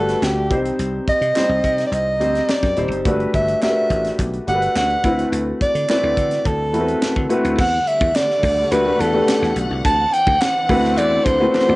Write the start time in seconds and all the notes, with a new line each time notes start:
Already playing: G1 A3 D4 F#4 G4 A4 B4
0.09 snare, closed hi-hat
0.22 D2 G4, snare, clap
0.50 C2 G3 C4 D#4 G4 C5, kick, closed hi-hat
0.65 closed hi-hat
0.79 C2, closed hi-hat
1.08 D#5, kick, closed hi-hat
1.21 C3, closed hi-hat
1.35 G3 C4 D#4 G4 C5, snare, clap
1.49 C2
1.64 C3, kick, closed hi-hat
1.78 snare, closed hi-hat
1.87 D5
1.92 C2 D#5, clap, closed hi-hat
2.20 D2 G3 C4 D#4 G4 C5, closed hi-hat
2.35 snare, closed hi-hat
2.49 D5, snare, clap
2.63 F#2, kick, snare, closed hi-hat
2.77 D#1 G3 C4 D#4 G4 C5, closed hi-hat
2.92 F#1, closed hi-hat
3.05 G1 A3 D4 F#4 G4 B4, kick, closed hi-hat
3.20 closed hi-hat
3.34 G1 E5, kick, closed hi-hat
3.48 closed hi-hat
3.62 A3 D4 F#4 G4 A#4 E5, snare, clap
3.69 B4
3.90 A1, kick, closed hi-hat
4.05 snare, closed hi-hat
4.19 B1, kick, clap, closed hi-hat
4.33 closed hi-hat
4.47 G1 A3 D4 F#4 G4 A4 F#5, closed hi-hat
4.55 B4
4.62 closed hi-hat
4.76 D2 F#5, snare, clap
4.90 closed hi-hat
5.03 D2 A3 C4 E4 F#4 B4, kick, closed hi-hat
5.19 closed hi-hat
5.32 D2, closed hi-hat
5.61 D5, kick, closed hi-hat
5.75 D3, closed hi-hat
5.89 A3 C4 E4 F#4 B4 D5, snare, clap
6.03 D2
6.17 D3, kick, closed hi-hat
6.31 snare, closed hi-hat
6.45 D2 A4, kick, closed hi-hat
6.73 E2 A3 C4 E4 F#4 A#4, closed hi-hat
6.81 B4
6.88 closed hi-hat
7.02 snare, clap
7.16 D3, kick
7.29 A3 C4 E4 F#4 B4, closed hi-hat
7.45 D2, closed hi-hat
7.58 E2 D3 G3 A3 F#5, kick, crash
7.87 E5, closed hi-hat
8.01 E2, kick
8.15 D5, snare, clap, closed hi-hat
8.30 snare
8.43 D2, kick, open hi-hat
8.71 D2 A3 D4 F#4 G4 B4, clap, closed hi-hat
8.85 A3 D4 F#4 G4 B4
9.00 E2 A4, closed hi-hat
9.14 A3 D4 F#4 G4 B4
9.28 snare, clap, closed hi-hat
9.42 E2, snare
9.56 B1, closed hi-hat
9.71 C2
9.84 D2 E3 C4 D4 A5, kick, closed hi-hat
10.13 G5, closed hi-hat
10.27 D2, kick
10.41 F#5, snare, clap, closed hi-hat
10.69 D2 A3 C4 E4 F#4 B4, kick, open hi-hat
10.84 snare
10.97 E2 D5, clap, closed hi-hat
11.25 D2 C5, kick, closed hi-hat
11.39 A3 C4 E4 F#4 B4
11.54 snare, clap, closed hi-hat
11.68 E2 A3 C4 E4 F#4 D5